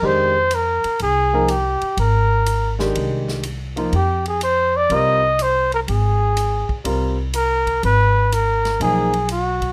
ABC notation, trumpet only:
X:1
M:4/4
L:1/8
Q:"Swing" 1/4=123
K:Fdor
V:1 name="Trumpet"
c2 B2 A2 G2 | B3 z4 z | G A c d e2 c B | A4 z2 B2 |
_c2 B2 A2 _G2 |]